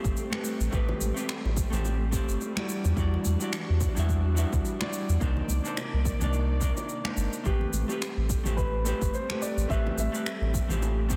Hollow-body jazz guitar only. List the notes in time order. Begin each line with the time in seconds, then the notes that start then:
Already playing: A3 C4 G4 C5
0.30 A3 C4 G4
0.34 B4
0.71 A3 C4 G4 B4
1.14 A3 C4 G4
1.18 B4
1.70 A3 C4 G4
1.74 C5
2.11 A3 C4 G4
2.15 C5
2.55 G3 E4 F#4
2.60 D5
2.96 G3 E4 F#4 D5
3.39 G3 E4 F#4
3.44 D5
3.95 G3 E4 F#4
3.99 E5
4.35 G3 E4 F#4 E5
4.79 G3 E4 F#4
4.83 D5
5.20 A#3 D4 D#4 C5
5.64 A#3 D4 D#4 C5
6.20 A#3 D4 D#4 D5
6.60 A#3 D4 D#4 D5
7.04 A#3 D4 D#4 C5
7.44 A3 C4 G4
7.48 B4
7.88 A3 C4 G4
7.92 B4
8.44 A3 C4 G4 C5
8.85 A3 C4 G4
8.89 C5
9.29 A3 C4 G4
9.33 B4
9.69 A3 C4 G4 B4
10.12 A3 C4 G4 B4
10.68 A3 C4 G4 C5
11.09 A3 C4 G4
11.13 C5